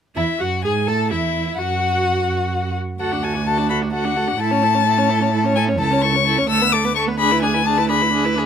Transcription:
0.15 0.24 E2 medium
0.15 0.38 E4 medium
0.15 0.24 E4 medium
0.15 0.42 E5 medium
0.39 0.66 F#2 soft
0.39 0.47 F#4 soft
0.39 0.64 F#4 soft
0.39 0.64 F#5 medium
0.64 0.89 G#2 medium
0.64 0.89 G#4 medium
0.64 0.72 G#4 medium
0.64 0.90 G#5 medium
0.87 1.13 A2 medium
0.87 1.10 A4 medium
0.87 1.12 A4 medium
0.87 1.11 A5 medium
1.10 1.58 E2 medium
1.10 1.60 E4 soft
1.10 1.60 E4 medium
1.10 1.58 E5 medium
1.58 2.74 F#2 medium
1.58 2.76 F#4 medium
1.58 2.77 F#4 medium
1.58 2.74 F#5 medium
3.00 4.35 D2 medium
3.00 3.14 F#4 soft
3.00 3.13 A4 soft
3.00 3.25 F#5 medium
3.12 3.25 D4 soft
3.12 3.24 F#4 soft
3.23 3.37 F#4 soft
3.23 3.36 A4 soft
3.23 3.48 G#5 medium
3.35 3.46 D4 soft
3.35 3.45 F#4 soft
3.46 3.60 F#4 soft
3.46 3.59 A4 soft
3.46 3.69 A5 medium
3.57 3.72 D4 soft
3.57 3.71 F#4 soft
3.69 3.84 F#4 soft
3.69 3.84 A4 soft
3.69 3.77 B5 medium
3.82 3.93 D4 soft
3.82 3.92 F#4 soft
3.93 4.06 F#4 soft
3.93 4.06 A4 soft
3.93 4.41 F#5 medium
4.05 4.17 D4 soft
4.05 4.18 F#4 soft
4.16 4.29 F#4 soft
4.16 4.29 A4 soft
4.28 4.38 D4 soft
4.28 4.39 F#4 soft
4.39 5.81 A2 medium
4.39 4.52 E4 medium
4.39 4.52 A4 soft
4.39 5.55 A5 medium
4.51 4.64 C#4 soft
4.51 4.65 C#5 soft
4.62 4.76 E4 soft
4.62 4.76 A4 soft
4.74 4.85 C#4 soft
4.74 4.86 C#5 soft
4.86 4.99 E4 soft
4.86 5.00 A4 soft
4.98 5.11 C#4 soft
4.98 5.11 C#5 soft
5.09 5.22 E4 medium
5.09 5.23 A4 soft
5.20 5.32 C#4 soft
5.20 5.33 C#5 soft
5.32 5.46 E4 medium
5.32 5.47 A4 soft
5.44 5.57 C#4 soft
5.44 5.58 C#5 soft
5.56 5.69 E4 medium
5.56 5.70 A4 medium
5.56 5.64 G#5 medium
5.67 5.78 C#4 soft
5.67 5.79 C#5 medium
5.79 6.49 C#2 medium
5.79 5.92 E4 soft
5.79 5.94 A4 medium
5.79 6.03 A5 medium
5.91 6.04 C#4 soft
5.91 6.05 C#5 soft
6.02 6.15 E4 soft
6.02 6.17 A4 soft
6.02 6.49 C#6 medium
6.14 6.26 C#4 soft
6.14 6.27 C#5 soft
6.26 6.40 E4 medium
6.26 6.40 A4 soft
6.38 6.49 C#4 soft
6.38 6.49 C#5 soft
6.49 8.46 D2 medium
6.49 6.63 A3 soft
6.49 6.63 A4 medium
6.49 6.74 E6 loud
6.61 6.74 B3 medium
6.61 6.75 B4 medium
6.72 6.86 A3 medium
6.72 6.86 A4 medium
6.72 6.95 D6 medium
6.84 6.95 B3 medium
6.84 6.96 B4 soft
6.95 7.09 A3 medium
6.95 7.10 A4 soft
6.95 7.03 C#6 medium
7.07 7.19 B3 soft
7.07 7.19 B4 medium
7.19 7.33 D4 medium
7.19 7.33 G#4 medium
7.19 7.42 B5 medium
7.31 7.44 E4 medium
7.31 7.45 B4 medium
7.42 7.56 D4 medium
7.42 7.55 G#4 medium
7.42 7.68 G#5 medium
7.54 7.65 E4 medium
7.54 7.66 B4 soft
7.66 7.79 D4 medium
7.66 7.79 G#4 medium
7.66 7.89 A5 medium
7.77 7.90 E4 medium
7.77 7.91 B4 soft
7.89 8.03 D4 medium
7.89 8.03 G#4 medium
7.89 8.36 B5 medium
8.01 8.12 E4 medium
8.01 8.13 B4 soft
8.13 8.26 D4 medium
8.13 8.27 G#4 medium
8.24 8.37 E4 soft
8.24 8.39 B4 medium
8.36 8.46 D4 medium
8.36 8.46 G#4 medium

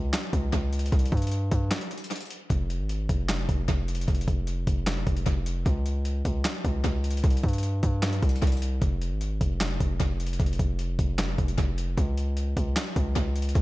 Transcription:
0.00 0.13 C#2 loud
0.13 snare loud
0.13 clap medium
0.13 closed hi-hat medium
0.33 0.52 C#2 loud
0.33 kick medium
0.33 closed hi-hat medium
0.53 0.91 C#2 loud
0.53 kick loud
0.53 closed hi-hat medium
0.73 closed hi-hat medium
0.79 closed hi-hat medium
0.86 closed hi-hat medium
0.92 1.11 C2 loud
0.92 kick loud
0.92 closed hi-hat medium
0.99 closed hi-hat medium
1.05 closed hi-hat medium
1.12 1.50 G2 loud
1.12 kick medium
1.12 closed hi-hat soft
1.17 closed hi-hat soft
1.22 closed hi-hat medium
1.27 closed hi-hat medium
1.32 closed hi-hat medium
1.51 1.70 G2 loud
1.51 kick loud
1.51 closed hi-hat medium
1.71 snare loud
1.71 clap medium
1.71 closed hi-hat medium
1.81 closed hi-hat medium
1.91 closed hi-hat medium
1.98 closed hi-hat medium
2.04 closed hi-hat medium
2.11 closed hi-hat medium
2.16 closed hi-hat medium
2.21 closed hi-hat medium
2.25 closed hi-hat soft
2.30 closed hi-hat medium
2.50 2.81 F1 loud
2.50 kick loud
2.50 closed hi-hat medium
2.70 closed hi-hat medium
2.80 3.08 G#1 loud
2.89 closed hi-hat medium
3.09 3.47 F1 loud
3.09 kick loud
3.09 closed hi-hat medium
3.29 snare loud
3.29 clap medium
3.29 closed hi-hat medium
3.49 3.68 F1 loud
3.49 kick medium
3.49 closed hi-hat medium
3.68 4.06 F1 loud
3.68 kick loud
3.68 closed hi-hat medium
3.88 closed hi-hat medium
3.95 closed hi-hat medium
4.01 closed hi-hat medium
4.08 4.27 F1 loud
4.08 kick loud
4.08 closed hi-hat medium
4.15 closed hi-hat medium
4.21 closed hi-hat medium
4.28 4.66 F1 loud
4.28 kick loud
4.28 closed hi-hat medium
4.47 closed hi-hat medium
4.67 5.05 F1 loud
4.67 kick loud
4.67 closed hi-hat medium
4.87 snare loud
4.87 clap medium
4.87 closed hi-hat medium
5.07 5.26 F1 loud
5.07 kick medium
5.07 closed hi-hat medium
5.17 closed hi-hat medium
5.26 5.64 F1 loud
5.26 kick loud
5.26 closed hi-hat medium
5.46 closed hi-hat medium
5.66 6.23 C#2 loud
5.66 kick loud
5.66 closed hi-hat medium
5.86 closed hi-hat medium
6.05 closed hi-hat medium
6.25 6.44 C#2 loud
6.25 kick loud
6.25 closed hi-hat medium
6.45 snare loud
6.45 clap medium
6.45 closed hi-hat medium
6.65 6.84 C#2 loud
6.65 kick medium
6.65 closed hi-hat medium
6.84 7.22 C#2 loud
6.84 kick loud
6.84 closed hi-hat medium
7.04 closed hi-hat medium
7.11 closed hi-hat medium
7.17 closed hi-hat medium
7.24 7.43 C2 loud
7.24 kick loud
7.24 closed hi-hat medium
7.30 closed hi-hat medium
7.37 closed hi-hat medium
7.43 7.81 G2 loud
7.43 kick medium
7.43 closed hi-hat soft
7.48 closed hi-hat soft
7.53 closed hi-hat medium
7.58 closed hi-hat medium
7.63 closed hi-hat medium
7.83 8.21 G2 loud
7.83 kick medium
7.83 closed hi-hat medium
8.03 snare loud
8.03 clap medium
8.03 closed hi-hat medium
8.13 closed hi-hat medium
8.22 8.41 C2 loud
8.22 kick medium
8.22 closed hi-hat medium
8.29 closed hi-hat medium
8.36 closed hi-hat medium
8.42 8.80 C2 loud
8.42 kick loud
8.42 closed hi-hat medium
8.47 closed hi-hat medium
8.52 closed hi-hat medium
8.57 closed hi-hat soft
8.62 closed hi-hat medium
8.82 9.13 F1 loud
8.82 kick loud
8.82 closed hi-hat medium
9.02 closed hi-hat medium
9.11 9.39 G#1 loud
9.21 closed hi-hat medium
9.41 9.79 F1 loud
9.41 kick loud
9.41 closed hi-hat medium
9.61 snare loud
9.61 clap medium
9.61 closed hi-hat medium
9.80 9.99 F1 loud
9.80 kick medium
9.80 closed hi-hat medium
10.00 10.38 F1 loud
10.00 kick loud
10.00 closed hi-hat medium
10.20 closed hi-hat medium
10.26 closed hi-hat medium
10.33 closed hi-hat medium
10.40 10.59 F1 loud
10.40 kick loud
10.40 closed hi-hat medium
10.46 closed hi-hat medium
10.53 closed hi-hat medium
10.59 10.97 F1 loud
10.59 kick medium
10.59 closed hi-hat medium
10.79 closed hi-hat medium
10.99 11.37 F1 loud
10.99 kick loud
10.99 closed hi-hat medium
11.19 snare loud
11.19 clap medium
11.19 closed hi-hat medium
11.38 11.57 F1 loud
11.38 kick medium
11.38 closed hi-hat medium
11.48 closed hi-hat medium
11.58 11.96 F1 loud
11.58 kick loud
11.58 closed hi-hat medium
11.78 closed hi-hat medium
11.98 12.54 C#2 loud
11.98 kick loud
11.98 closed hi-hat medium
12.17 closed hi-hat medium
12.37 closed hi-hat medium
12.57 12.76 C#2 loud
12.57 kick loud
12.57 closed hi-hat medium
12.76 snare loud
12.76 clap medium
12.76 closed hi-hat medium
12.96 13.15 C#2 loud
12.96 kick loud
12.96 closed hi-hat medium
13.16 13.54 C#2 loud
13.16 kick loud
13.16 closed hi-hat medium
13.36 closed hi-hat medium
13.42 closed hi-hat medium
13.49 closed hi-hat medium
13.55 13.62 C2 loud
13.55 kick loud
13.55 closed hi-hat medium

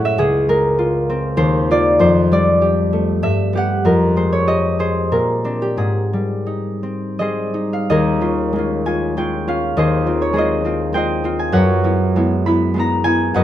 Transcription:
0.00 0.21 A2 medium
0.00 0.48 G#3 soft
0.00 1.41 C#4 medium
0.00 0.21 E4 medium
0.00 0.17 G#4 soft
0.00 1.42 C#5 medium
0.00 0.35 F#5 medium
0.05 0.21 E5 medium
0.18 1.41 C#2 medium
0.18 1.41 G#4 medium
0.49 1.41 G#3 soft
0.49 2.03 A#4 medium
0.79 1.69 F4 medium
1.10 1.41 C4 soft
1.37 2.01 D#2 medium
1.37 1.89 C5 medium
1.71 2.03 A#3 soft
1.71 3.24 F4 medium
1.71 2.03 D5 medium
1.99 3.23 F2 medium
1.99 3.23 C5 medium
2.32 5.14 G3 soft
2.32 3.87 D5 medium
2.62 3.54 G4 soft
2.93 3.86 A3 soft
3.23 3.86 G2 medium
3.23 3.74 E5 medium
3.53 3.87 B3 soft
3.53 4.46 G4 soft
3.57 3.87 F#5 medium
3.85 5.14 F2 medium
3.85 4.38 A#4 medium
4.16 8.06 G#3 soft
4.16 4.78 C5 medium
4.33 4.59 C#5 medium
4.47 5.13 G4 soft
4.47 5.13 D#5 medium
4.79 5.76 G#4 soft
4.79 7.20 C5 medium
5.12 5.80 A#2 soft
5.12 5.80 A#4 medium
5.44 6.82 C4 soft
5.44 5.80 D4 soft
5.62 5.90 G4 medium
5.77 7.91 G#2 soft
5.77 7.20 G#4 soft
6.13 7.18 G3 soft
6.46 7.53 D#4 soft
6.83 7.91 C4 soft
7.19 7.90 G3 soft
7.19 7.90 G#4 soft
7.19 7.91 C5 soft
7.19 7.88 D#5 medium
7.54 11.44 D#4 soft
7.73 8.00 F5 soft
7.90 9.76 D#2 medium
7.90 9.78 G#4 soft
7.90 9.80 A#4 soft
7.90 9.76 D#5 medium
8.21 8.54 C#4 soft
8.21 8.54 F4 soft
8.53 9.16 G#3 soft
8.53 8.84 C#4 soft
8.58 8.85 F4 soft
8.86 9.16 C#4 soft
8.86 9.17 F4 soft
8.86 11.38 G#5 medium
9.17 10.32 G#3 soft
9.17 9.47 C#4 soft
9.17 9.47 F4 soft
9.17 9.68 G5 medium
9.48 9.79 C#4 soft
9.48 10.05 F4 soft
9.48 11.58 F5 medium
9.77 11.57 D#2 medium
9.77 10.33 G#4 soft
9.77 10.35 C5 soft
9.77 10.35 D#5 medium
10.06 10.34 C4 soft
10.06 10.35 F4 soft
10.22 10.46 C#5 medium
10.33 10.93 G#3 soft
10.33 10.63 C4 soft
10.33 13.44 G#4 medium
10.33 10.94 C5 soft
10.38 10.64 F4 soft
10.38 10.94 D#5 medium
10.64 10.92 C4 soft
10.64 10.94 F4 soft
10.93 12.15 G#3 soft
10.93 11.23 C4 soft
10.93 11.23 F4 soft
10.93 11.57 C5 medium
10.93 11.70 G5 medium
10.97 11.57 D#5 medium
11.24 11.57 C4 soft
11.24 11.57 F4 soft
11.39 13.03 G#5 medium
11.52 13.35 F#2 medium
11.52 13.34 B4 medium
11.52 13.38 C#5 medium
11.52 13.33 F#5 medium
11.84 12.15 B3 soft
11.84 12.16 E4 soft
12.16 12.74 G#3 soft
12.16 12.45 B3 soft
12.16 12.46 E4 soft
12.46 12.76 B3 soft
12.46 12.76 E4 soft
12.46 13.44 B5 medium
12.74 13.44 G#3 soft
12.74 13.04 B3 soft
12.74 13.04 E4 soft
12.79 13.26 A#5 medium
13.04 13.44 B3 soft
13.04 13.37 E4 medium
13.04 13.44 G#5 medium
13.34 13.44 F#2 medium
13.34 13.44 B4 medium
13.34 13.44 D#5 medium
13.34 13.44 F#5 medium

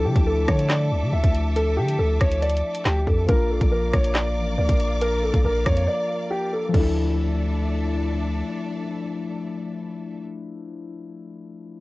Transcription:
0.00 3.23 F3 medium
0.00 3.24 A3 medium
0.00 3.25 D4 medium
0.00 3.26 E4 medium
0.00 3.25 A4 medium
0.00 3.25 E5 medium
0.00 3.25 A5 medium
0.00 3.25 D6 medium
0.05 0.15 D3 loud
0.05 0.25 G4 medium
0.16 0.47 D2 loud
0.16 kick medium
0.16 closed hi-hat medium
0.27 0.46 A4 medium
0.48 0.93 D3 loud
0.48 0.68 C#5 medium
0.48 kick medium
0.48 cross-stick loud
0.48 closed hi-hat medium
0.59 closed hi-hat medium
0.70 1.11 D5 medium
0.70 snare loud
0.70 clap loud
0.91 1.04 C#2 loud
1.02 1.12 D3 loud
1.13 1.23 D2 loud
1.13 1.53 E5 medium
1.24 1.79 D2 loud
1.24 kick medium
1.24 closed hi-hat medium
1.34 closed hi-hat medium
1.56 1.76 A4 loud
1.56 closed hi-hat medium
1.77 1.98 D3 loud
1.77 1.97 G4 medium
1.88 closed hi-hat medium
1.99 2.20 D2 loud
1.99 2.19 A4 medium
2.21 2.62 D2 loud
2.21 2.40 C#5 medium
2.21 kick medium
2.21 cross-stick loud
2.21 closed hi-hat medium
2.32 closed hi-hat medium
2.42 2.83 D5 medium
2.42 closed hi-hat medium
2.50 closed hi-hat medium
2.57 closed hi-hat medium
2.75 closed hi-hat medium
2.85 3.06 D2 loud
2.85 3.05 G4 medium
2.85 snare loud
2.85 clap loud
3.07 3.28 F2 loud
3.07 3.27 A4 medium
3.07 kick loud
3.07 open hi-hat medium
3.26 3.60 A#1 loud
3.26 6.68 F3 medium
3.26 6.70 A#3 medium
3.26 6.70 D4 medium
3.26 6.71 A#4 medium
3.26 3.48 A#4 loud
3.26 6.71 D5 medium
3.26 6.71 F5 medium
3.26 6.71 D6 loud
3.26 kick loud
3.26 closed hi-hat medium
3.31 6.71 F4 medium
3.50 3.70 A4 medium
3.61 3.92 A#1 loud
3.61 kick medium
3.61 closed hi-hat medium
3.72 3.91 A#4 medium
3.93 4.38 A#1 loud
3.93 4.13 C#5 medium
3.93 kick loud
3.93 cross-stick loud
3.93 closed hi-hat medium
4.04 closed hi-hat medium
4.15 4.55 D5 medium
4.15 snare loud
4.15 clap loud
4.37 4.57 A1 loud
4.58 4.68 D2 loud
4.58 4.99 D5 medium
4.69 5.31 A#1 loud
4.69 kick medium
4.69 closed hi-hat medium
4.80 closed hi-hat medium
5.01 5.21 A#4 loud
5.01 closed hi-hat medium
5.23 5.43 A4 medium
5.34 5.44 A#1 loud
5.34 kick medium
5.34 closed hi-hat medium
5.45 5.65 A#1 loud
5.45 5.64 A#4 medium
5.66 5.88 F2 loud
5.66 5.86 C#5 medium
5.66 kick loud
5.66 cross-stick loud
5.66 closed hi-hat medium
5.77 closed hi-hat medium
5.88 6.28 D5 medium
6.30 6.50 G4 medium
6.53 6.72 A4 medium
6.69 10.17 F3 medium
6.69 10.20 A3 medium
6.74 8.43 D2 loud
6.74 10.22 D4 medium
6.74 10.24 D4 medium
6.74 7.99 A4 medium
6.74 10.22 A4 medium
6.74 10.22 D5 medium
6.74 10.22 E5 medium
6.74 kick loud
6.74 crash medium
6.79 10.27 E4 loud

